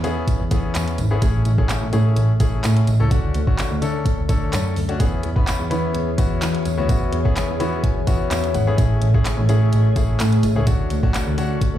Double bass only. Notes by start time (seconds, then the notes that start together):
0.04 E3
0.40 E2
0.51 E3
0.75 E2
0.98 G#1
1.22 A1
1.45 A1
1.82 A1
1.93 A2
2.16 A1
2.40 A1
2.64 A2
2.87 A1
3.00 C#2
3.11 D2
3.34 D2
3.71 D2
3.82 D3
4.18 D2
4.29 D3
4.53 F#2
4.76 D2
5.00 E2
5.24 E2
5.60 E2
5.71 E3
5.94 E2
6.18 E2
6.42 E3
6.65 E2
6.78 D2
6.89 E2
7.12 E2
7.48 E2
7.60 E3
7.96 E2
8.07 E3
8.31 E2
8.54 G#1
8.78 A1
9.01 A1
9.38 A1
9.49 A2
9.73 A1
9.96 A1
10.20 A2
10.43 A1
10.56 C#2
10.67 D2
10.91 D2
11.27 D2
11.38 D3
11.74 D2